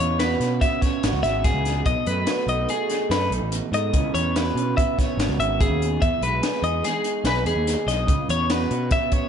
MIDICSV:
0, 0, Header, 1, 5, 480
1, 0, Start_track
1, 0, Tempo, 415225
1, 2154, Time_signature, 5, 2, 24, 8
1, 10736, End_track
2, 0, Start_track
2, 0, Title_t, "Clean electric guitar"
2, 0, Program_c, 0, 27
2, 0, Note_on_c, 0, 73, 73
2, 223, Note_on_c, 0, 71, 71
2, 232, Note_off_c, 0, 73, 0
2, 709, Note_off_c, 0, 71, 0
2, 709, Note_on_c, 0, 76, 81
2, 944, Note_off_c, 0, 76, 0
2, 944, Note_on_c, 0, 73, 73
2, 1418, Note_off_c, 0, 73, 0
2, 1423, Note_on_c, 0, 76, 81
2, 1668, Note_off_c, 0, 76, 0
2, 1668, Note_on_c, 0, 68, 78
2, 2151, Note_off_c, 0, 68, 0
2, 2151, Note_on_c, 0, 75, 91
2, 2392, Note_off_c, 0, 75, 0
2, 2397, Note_on_c, 0, 71, 76
2, 2875, Note_off_c, 0, 71, 0
2, 2879, Note_on_c, 0, 75, 72
2, 3116, Note_off_c, 0, 75, 0
2, 3120, Note_on_c, 0, 68, 74
2, 3596, Note_off_c, 0, 68, 0
2, 3599, Note_on_c, 0, 71, 80
2, 3836, Note_off_c, 0, 71, 0
2, 4327, Note_on_c, 0, 75, 76
2, 4787, Note_off_c, 0, 75, 0
2, 4792, Note_on_c, 0, 73, 76
2, 5040, Note_off_c, 0, 73, 0
2, 5040, Note_on_c, 0, 71, 73
2, 5510, Note_off_c, 0, 71, 0
2, 5515, Note_on_c, 0, 76, 77
2, 5764, Note_off_c, 0, 76, 0
2, 5764, Note_on_c, 0, 73, 70
2, 6236, Note_off_c, 0, 73, 0
2, 6241, Note_on_c, 0, 76, 72
2, 6477, Note_off_c, 0, 76, 0
2, 6482, Note_on_c, 0, 68, 76
2, 6956, Note_on_c, 0, 76, 84
2, 6958, Note_off_c, 0, 68, 0
2, 7195, Note_off_c, 0, 76, 0
2, 7202, Note_on_c, 0, 71, 75
2, 7674, Note_on_c, 0, 75, 69
2, 7678, Note_off_c, 0, 71, 0
2, 7914, Note_off_c, 0, 75, 0
2, 7916, Note_on_c, 0, 68, 79
2, 8395, Note_off_c, 0, 68, 0
2, 8401, Note_on_c, 0, 71, 85
2, 8627, Note_off_c, 0, 71, 0
2, 8632, Note_on_c, 0, 68, 77
2, 9108, Note_on_c, 0, 75, 72
2, 9113, Note_off_c, 0, 68, 0
2, 9591, Note_off_c, 0, 75, 0
2, 9599, Note_on_c, 0, 73, 72
2, 9844, Note_off_c, 0, 73, 0
2, 9844, Note_on_c, 0, 71, 78
2, 10310, Note_off_c, 0, 71, 0
2, 10314, Note_on_c, 0, 76, 87
2, 10553, Note_off_c, 0, 76, 0
2, 10553, Note_on_c, 0, 73, 78
2, 10736, Note_off_c, 0, 73, 0
2, 10736, End_track
3, 0, Start_track
3, 0, Title_t, "Clean electric guitar"
3, 0, Program_c, 1, 27
3, 0, Note_on_c, 1, 49, 73
3, 0, Note_on_c, 1, 59, 54
3, 265, Note_on_c, 1, 66, 57
3, 483, Note_on_c, 1, 61, 54
3, 721, Note_off_c, 1, 59, 0
3, 726, Note_on_c, 1, 59, 59
3, 953, Note_off_c, 1, 61, 0
3, 967, Note_on_c, 1, 61, 54
3, 1209, Note_off_c, 1, 66, 0
3, 1222, Note_on_c, 1, 66, 61
3, 1440, Note_off_c, 1, 61, 0
3, 1459, Note_on_c, 1, 61, 56
3, 1673, Note_off_c, 1, 49, 0
3, 1686, Note_on_c, 1, 49, 71
3, 1929, Note_off_c, 1, 59, 0
3, 1934, Note_on_c, 1, 59, 58
3, 2131, Note_off_c, 1, 49, 0
3, 2137, Note_off_c, 1, 61, 0
3, 2139, Note_off_c, 1, 66, 0
3, 2164, Note_on_c, 1, 47, 70
3, 2410, Note_off_c, 1, 59, 0
3, 2415, Note_on_c, 1, 57, 63
3, 2650, Note_on_c, 1, 66, 61
3, 2882, Note_on_c, 1, 63, 56
3, 3114, Note_off_c, 1, 57, 0
3, 3128, Note_on_c, 1, 57, 61
3, 3350, Note_off_c, 1, 63, 0
3, 3364, Note_on_c, 1, 63, 54
3, 3590, Note_off_c, 1, 66, 0
3, 3594, Note_on_c, 1, 69, 59
3, 3839, Note_off_c, 1, 63, 0
3, 3851, Note_on_c, 1, 63, 54
3, 4054, Note_off_c, 1, 47, 0
3, 4068, Note_on_c, 1, 47, 70
3, 4311, Note_off_c, 1, 57, 0
3, 4325, Note_on_c, 1, 57, 57
3, 4521, Note_off_c, 1, 47, 0
3, 4525, Note_off_c, 1, 69, 0
3, 4530, Note_off_c, 1, 57, 0
3, 4533, Note_off_c, 1, 63, 0
3, 4543, Note_on_c, 1, 49, 70
3, 4556, Note_on_c, 1, 52, 61
3, 4565, Note_on_c, 1, 59, 56
3, 4573, Note_on_c, 1, 61, 66
3, 4584, Note_on_c, 1, 64, 61
3, 4782, Note_off_c, 1, 59, 0
3, 4787, Note_on_c, 1, 59, 57
3, 5042, Note_off_c, 1, 64, 0
3, 5046, Note_on_c, 1, 66, 60
3, 5260, Note_off_c, 1, 61, 0
3, 5274, Note_on_c, 1, 61, 53
3, 5513, Note_off_c, 1, 59, 0
3, 5518, Note_on_c, 1, 59, 62
3, 5742, Note_off_c, 1, 61, 0
3, 5756, Note_on_c, 1, 61, 50
3, 5991, Note_off_c, 1, 66, 0
3, 6005, Note_on_c, 1, 66, 57
3, 6235, Note_off_c, 1, 61, 0
3, 6248, Note_on_c, 1, 61, 59
3, 6461, Note_off_c, 1, 49, 0
3, 6475, Note_on_c, 1, 49, 74
3, 6722, Note_off_c, 1, 59, 0
3, 6727, Note_on_c, 1, 59, 53
3, 6925, Note_off_c, 1, 49, 0
3, 6931, Note_off_c, 1, 66, 0
3, 6932, Note_off_c, 1, 61, 0
3, 6953, Note_on_c, 1, 40, 72
3, 7184, Note_off_c, 1, 59, 0
3, 7188, Note_on_c, 1, 56, 58
3, 7423, Note_on_c, 1, 68, 64
3, 7662, Note_on_c, 1, 63, 53
3, 7697, Note_off_c, 1, 52, 0
3, 7885, Note_off_c, 1, 56, 0
3, 7890, Note_on_c, 1, 56, 58
3, 8134, Note_off_c, 1, 63, 0
3, 8148, Note_on_c, 1, 63, 55
3, 8379, Note_off_c, 1, 68, 0
3, 8393, Note_on_c, 1, 68, 60
3, 8606, Note_off_c, 1, 63, 0
3, 8620, Note_on_c, 1, 63, 63
3, 8848, Note_off_c, 1, 40, 0
3, 8862, Note_on_c, 1, 40, 74
3, 9097, Note_off_c, 1, 56, 0
3, 9111, Note_on_c, 1, 56, 54
3, 9318, Note_off_c, 1, 63, 0
3, 9324, Note_off_c, 1, 56, 0
3, 9325, Note_off_c, 1, 68, 0
3, 9333, Note_on_c, 1, 49, 75
3, 9348, Note_off_c, 1, 40, 0
3, 9581, Note_on_c, 1, 59, 61
3, 9821, Note_on_c, 1, 66, 60
3, 10069, Note_on_c, 1, 61, 56
3, 10321, Note_off_c, 1, 59, 0
3, 10326, Note_on_c, 1, 59, 62
3, 10534, Note_off_c, 1, 61, 0
3, 10548, Note_on_c, 1, 61, 58
3, 10736, Note_off_c, 1, 49, 0
3, 10736, Note_off_c, 1, 59, 0
3, 10736, Note_off_c, 1, 61, 0
3, 10736, Note_off_c, 1, 66, 0
3, 10736, End_track
4, 0, Start_track
4, 0, Title_t, "Picked electric bass"
4, 0, Program_c, 2, 34
4, 0, Note_on_c, 2, 40, 83
4, 404, Note_off_c, 2, 40, 0
4, 464, Note_on_c, 2, 47, 94
4, 677, Note_off_c, 2, 47, 0
4, 1197, Note_on_c, 2, 32, 93
4, 1292, Note_off_c, 2, 32, 0
4, 1299, Note_on_c, 2, 37, 83
4, 1410, Note_off_c, 2, 37, 0
4, 1420, Note_on_c, 2, 32, 83
4, 1738, Note_off_c, 2, 32, 0
4, 1782, Note_on_c, 2, 37, 87
4, 2099, Note_off_c, 2, 37, 0
4, 2148, Note_on_c, 2, 35, 105
4, 2254, Note_off_c, 2, 35, 0
4, 2389, Note_on_c, 2, 42, 86
4, 2599, Note_off_c, 2, 42, 0
4, 2851, Note_on_c, 2, 35, 80
4, 3069, Note_off_c, 2, 35, 0
4, 3582, Note_on_c, 2, 42, 91
4, 3795, Note_off_c, 2, 42, 0
4, 3818, Note_on_c, 2, 35, 86
4, 3928, Note_off_c, 2, 35, 0
4, 3955, Note_on_c, 2, 33, 77
4, 4162, Note_off_c, 2, 33, 0
4, 4298, Note_on_c, 2, 44, 84
4, 4513, Note_off_c, 2, 44, 0
4, 4549, Note_on_c, 2, 37, 90
4, 4655, Note_off_c, 2, 37, 0
4, 4787, Note_on_c, 2, 40, 83
4, 5206, Note_off_c, 2, 40, 0
4, 5261, Note_on_c, 2, 47, 87
4, 5475, Note_off_c, 2, 47, 0
4, 5979, Note_on_c, 2, 32, 89
4, 6089, Note_off_c, 2, 32, 0
4, 6101, Note_on_c, 2, 37, 80
4, 6210, Note_off_c, 2, 37, 0
4, 6224, Note_on_c, 2, 32, 87
4, 6541, Note_off_c, 2, 32, 0
4, 6585, Note_on_c, 2, 39, 81
4, 6901, Note_off_c, 2, 39, 0
4, 6956, Note_on_c, 2, 40, 93
4, 7059, Note_off_c, 2, 40, 0
4, 7183, Note_on_c, 2, 35, 81
4, 7396, Note_off_c, 2, 35, 0
4, 7658, Note_on_c, 2, 40, 86
4, 7873, Note_off_c, 2, 40, 0
4, 8372, Note_on_c, 2, 35, 98
4, 8590, Note_off_c, 2, 35, 0
4, 8617, Note_on_c, 2, 40, 82
4, 8729, Note_off_c, 2, 40, 0
4, 8734, Note_on_c, 2, 39, 80
4, 8951, Note_off_c, 2, 39, 0
4, 9093, Note_on_c, 2, 35, 84
4, 9311, Note_off_c, 2, 35, 0
4, 9339, Note_on_c, 2, 37, 90
4, 9450, Note_off_c, 2, 37, 0
4, 9583, Note_on_c, 2, 40, 85
4, 10005, Note_off_c, 2, 40, 0
4, 10068, Note_on_c, 2, 47, 103
4, 10279, Note_off_c, 2, 47, 0
4, 10736, End_track
5, 0, Start_track
5, 0, Title_t, "Drums"
5, 227, Note_on_c, 9, 42, 97
5, 231, Note_on_c, 9, 38, 107
5, 342, Note_off_c, 9, 42, 0
5, 347, Note_off_c, 9, 38, 0
5, 471, Note_on_c, 9, 42, 67
5, 476, Note_on_c, 9, 38, 32
5, 587, Note_off_c, 9, 42, 0
5, 592, Note_off_c, 9, 38, 0
5, 711, Note_on_c, 9, 36, 99
5, 716, Note_on_c, 9, 42, 95
5, 721, Note_on_c, 9, 38, 32
5, 827, Note_off_c, 9, 36, 0
5, 832, Note_off_c, 9, 42, 0
5, 836, Note_off_c, 9, 38, 0
5, 951, Note_on_c, 9, 36, 81
5, 954, Note_on_c, 9, 42, 75
5, 959, Note_on_c, 9, 38, 34
5, 1067, Note_off_c, 9, 36, 0
5, 1070, Note_off_c, 9, 42, 0
5, 1075, Note_off_c, 9, 38, 0
5, 1195, Note_on_c, 9, 42, 92
5, 1199, Note_on_c, 9, 38, 105
5, 1310, Note_off_c, 9, 42, 0
5, 1315, Note_off_c, 9, 38, 0
5, 1433, Note_on_c, 9, 42, 64
5, 1438, Note_on_c, 9, 38, 32
5, 1549, Note_off_c, 9, 42, 0
5, 1553, Note_off_c, 9, 38, 0
5, 1670, Note_on_c, 9, 36, 109
5, 1671, Note_on_c, 9, 42, 96
5, 1675, Note_on_c, 9, 38, 33
5, 1786, Note_off_c, 9, 36, 0
5, 1786, Note_off_c, 9, 42, 0
5, 1791, Note_off_c, 9, 38, 0
5, 1912, Note_on_c, 9, 42, 63
5, 1917, Note_on_c, 9, 38, 34
5, 2028, Note_off_c, 9, 42, 0
5, 2032, Note_off_c, 9, 38, 0
5, 2147, Note_on_c, 9, 36, 105
5, 2148, Note_on_c, 9, 42, 84
5, 2263, Note_off_c, 9, 36, 0
5, 2263, Note_off_c, 9, 42, 0
5, 2387, Note_on_c, 9, 42, 64
5, 2502, Note_off_c, 9, 42, 0
5, 2620, Note_on_c, 9, 42, 86
5, 2625, Note_on_c, 9, 38, 115
5, 2736, Note_off_c, 9, 42, 0
5, 2741, Note_off_c, 9, 38, 0
5, 2872, Note_on_c, 9, 42, 60
5, 2987, Note_off_c, 9, 42, 0
5, 3106, Note_on_c, 9, 42, 88
5, 3221, Note_off_c, 9, 42, 0
5, 3348, Note_on_c, 9, 42, 67
5, 3352, Note_on_c, 9, 38, 36
5, 3463, Note_off_c, 9, 42, 0
5, 3468, Note_off_c, 9, 38, 0
5, 3597, Note_on_c, 9, 42, 84
5, 3602, Note_on_c, 9, 38, 105
5, 3713, Note_off_c, 9, 42, 0
5, 3717, Note_off_c, 9, 38, 0
5, 3841, Note_on_c, 9, 42, 69
5, 3957, Note_off_c, 9, 42, 0
5, 4069, Note_on_c, 9, 42, 94
5, 4185, Note_off_c, 9, 42, 0
5, 4318, Note_on_c, 9, 42, 71
5, 4433, Note_off_c, 9, 42, 0
5, 4549, Note_on_c, 9, 42, 97
5, 4553, Note_on_c, 9, 36, 104
5, 4665, Note_off_c, 9, 42, 0
5, 4668, Note_off_c, 9, 36, 0
5, 4796, Note_on_c, 9, 42, 76
5, 4911, Note_off_c, 9, 42, 0
5, 5039, Note_on_c, 9, 42, 93
5, 5043, Note_on_c, 9, 38, 112
5, 5154, Note_off_c, 9, 42, 0
5, 5159, Note_off_c, 9, 38, 0
5, 5288, Note_on_c, 9, 42, 63
5, 5404, Note_off_c, 9, 42, 0
5, 5524, Note_on_c, 9, 36, 100
5, 5537, Note_on_c, 9, 42, 92
5, 5640, Note_off_c, 9, 36, 0
5, 5653, Note_off_c, 9, 42, 0
5, 5764, Note_on_c, 9, 36, 75
5, 5771, Note_on_c, 9, 42, 68
5, 5776, Note_on_c, 9, 38, 37
5, 5880, Note_off_c, 9, 36, 0
5, 5887, Note_off_c, 9, 42, 0
5, 5892, Note_off_c, 9, 38, 0
5, 6006, Note_on_c, 9, 42, 78
5, 6011, Note_on_c, 9, 38, 108
5, 6122, Note_off_c, 9, 42, 0
5, 6126, Note_off_c, 9, 38, 0
5, 6246, Note_on_c, 9, 42, 64
5, 6362, Note_off_c, 9, 42, 0
5, 6480, Note_on_c, 9, 36, 106
5, 6486, Note_on_c, 9, 42, 89
5, 6596, Note_off_c, 9, 36, 0
5, 6601, Note_off_c, 9, 42, 0
5, 6730, Note_on_c, 9, 42, 63
5, 6845, Note_off_c, 9, 42, 0
5, 6960, Note_on_c, 9, 36, 105
5, 6960, Note_on_c, 9, 42, 82
5, 7075, Note_off_c, 9, 36, 0
5, 7075, Note_off_c, 9, 42, 0
5, 7196, Note_on_c, 9, 42, 64
5, 7311, Note_off_c, 9, 42, 0
5, 7434, Note_on_c, 9, 42, 96
5, 7438, Note_on_c, 9, 38, 110
5, 7549, Note_off_c, 9, 42, 0
5, 7554, Note_off_c, 9, 38, 0
5, 7672, Note_on_c, 9, 42, 61
5, 7787, Note_off_c, 9, 42, 0
5, 7912, Note_on_c, 9, 42, 91
5, 7916, Note_on_c, 9, 38, 35
5, 8027, Note_off_c, 9, 42, 0
5, 8032, Note_off_c, 9, 38, 0
5, 8143, Note_on_c, 9, 42, 76
5, 8258, Note_off_c, 9, 42, 0
5, 8379, Note_on_c, 9, 42, 95
5, 8384, Note_on_c, 9, 38, 104
5, 8495, Note_off_c, 9, 42, 0
5, 8499, Note_off_c, 9, 38, 0
5, 8626, Note_on_c, 9, 42, 73
5, 8742, Note_off_c, 9, 42, 0
5, 8871, Note_on_c, 9, 42, 103
5, 8876, Note_on_c, 9, 38, 35
5, 8987, Note_off_c, 9, 42, 0
5, 8991, Note_off_c, 9, 38, 0
5, 9113, Note_on_c, 9, 42, 69
5, 9117, Note_on_c, 9, 38, 34
5, 9228, Note_off_c, 9, 42, 0
5, 9233, Note_off_c, 9, 38, 0
5, 9345, Note_on_c, 9, 36, 107
5, 9349, Note_on_c, 9, 42, 94
5, 9460, Note_off_c, 9, 36, 0
5, 9464, Note_off_c, 9, 42, 0
5, 9588, Note_on_c, 9, 42, 68
5, 9703, Note_off_c, 9, 42, 0
5, 9823, Note_on_c, 9, 42, 91
5, 9828, Note_on_c, 9, 38, 109
5, 9939, Note_off_c, 9, 42, 0
5, 9943, Note_off_c, 9, 38, 0
5, 10067, Note_on_c, 9, 42, 66
5, 10182, Note_off_c, 9, 42, 0
5, 10297, Note_on_c, 9, 42, 85
5, 10302, Note_on_c, 9, 38, 35
5, 10303, Note_on_c, 9, 36, 109
5, 10413, Note_off_c, 9, 42, 0
5, 10418, Note_off_c, 9, 36, 0
5, 10418, Note_off_c, 9, 38, 0
5, 10540, Note_on_c, 9, 42, 71
5, 10544, Note_on_c, 9, 36, 83
5, 10655, Note_off_c, 9, 42, 0
5, 10659, Note_off_c, 9, 36, 0
5, 10736, End_track
0, 0, End_of_file